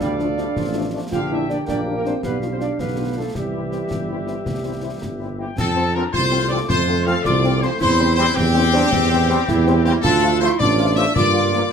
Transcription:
0.00 D2 G3 D4 A4 D5 F5, concert bass drum, snare
0.19 F3 A3 D4, snare
0.37 F3 G3 A3 D4, snare
0.56 A1 F3, concert bass drum, snare
0.74 F3 A3 D4
0.93 F3 A3 D4
1.11 A#1 D3 F4 G4 F5 G5, concert bass drum, snare, crash
1.30 G3 A#3 D4 E4 E5
1.49 G3 A#3 D4 D5, snare
1.66 A#1 A#3 D4 G4 D5 G5, concert bass drum, snare
1.86 G3 A#3 D4
1.96 A#3 A#4
2.05 G3 A#3 C4 D4 C5, snare
2.23 B1 G3 B3 G4 B4 F5, concert bass drum, snare
2.41 G3 D4 F4, snare
2.52 C4 C5
2.60 G3 D4 F4 D5, snare
2.79 B1 D3 B3 G4 B4 F5, concert bass drum, snare
2.97 G3 D4 F4
3.16 G3 A3 D4 F4 A4
3.34 C2 E3 G3 G4 E5, concert bass drum, snare
3.53 G3 C4 E4
3.71 G3 C4 E4, snare
3.90 G1, concert bass drum, snare
4.09 G3 C4 E4
4.27 G3 C4 E4, snare
4.46 C2, concert bass drum, snare
4.64 G3 C4 E4
4.82 G3 C4 E4
5.02 G1, concert bass drum, snare
5.20 G3 C4 E4
5.38 G3 A#3 C4 E4 G4 G5
5.57 F2 C4 A4 A5, concert bass drum, snare, crash
5.76 F3 C4
5.94 F3 C4 D4 A#4 A#5
6.12 C2 A3 F4 C5 C6, concert bass drum, snare
6.32 F3 C4
6.49 F3 C4 F4 D5 D6
6.68 F2 F4 C5 C6, concert bass drum, snare
6.88 F3 C4
7.04 F3 C4 A4 F5 F6, snare
7.22 C2 F4 D5 D6, concert bass drum, snare
7.44 F3 C4, snare
7.61 F3 C4 E4 C5 C6, snare
7.81 E2 C4 E4 C5 C6, concert bass drum, snare, crash
7.98 G3 C4
8.15 G3 C4 E4 C5 C6
8.35 E2 C4 G4 G5, concert bass drum, snare
8.54 G3 C4 E4
8.73 G3 C4 D4
8.91 E2 C4, concert bass drum, snare
9.11 G3 C4
9.29 G3 C4, snare
9.48 E2 E4, concert bass drum, snare
9.66 G3 C4, snare
9.84 G3 A#3 C4 G4 G5, snare
10.02 D2 D4 F4 A4, concert bass drum, snare, crash
10.06 A5
10.22 F3 A3 F4
10.39 F3 A3 E4 F4 C5 C6
10.58 A1 D4 F4 D5 D6, concert bass drum, snare
10.79 F3 A3 F4
10.95 F3 A3 F4 G4 E5 E6
11.14 G2 A#3 F4 D5 D6, concert bass drum, snare
11.34 G3 A#3 F4
11.52 F3 G3 A#3 F4, snare

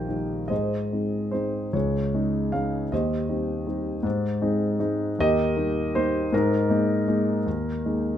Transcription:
Already playing: A#1 D#2 F3 G3 D#4 G4 A#4 D#5 F5 G5
0.08 F3 G3 D#4
0.48 G#2 G#4 C5 D#5
0.92 G#3 C4 D#4
1.31 G#3 C4 D#4 C5
1.73 C#2 G#4 C#5
2.14 G#3 C#4 D#4
2.52 G#3 C#4 D#4 F5
2.92 D#2 G4 C5 D#5
3.29 G3 C4 D#4
3.66 G3 C4 D#4
4.03 G#2
4.41 G#3 C4 D#4
4.79 G#3 C4 D#4
5.19 D#2 G4 A#4 D#5
5.56 G3 A#3 D#4
5.95 G3 A#3 D#4 C5
6.32 G#2 D#4 A#4
6.69 G#3 A#3 D#4
7.07 G#3 A#3 D#4
7.46 D#2
7.85 G#3 A#3 D#4

